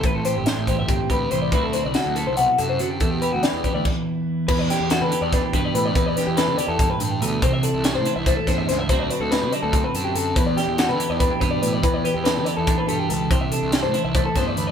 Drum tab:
CC |-------|-------|----x--|x------|
HH |xxxxxxx|xxxxxxx|xxxx---|-xxxxxx|
SD |--o----|--o----|--o----|-oo-o--|
BD |o--ooo-|o------|o--oo--|o---oo-|

CC |-------|-------|-------|-------|
HH |xxxxxxx|xxxxxxx|xxxxxxx|xxxxxxx|
SD |-oo----|--o--oo|--o----|-oo----|
BD |o---o--|o---oo-|o---o--|o---oo-|

CC |-------|-------|
HH |xxxxxxx|xxxxxxx|
SD |--o----|--o--o-|
BD |o---o--|o---oo-|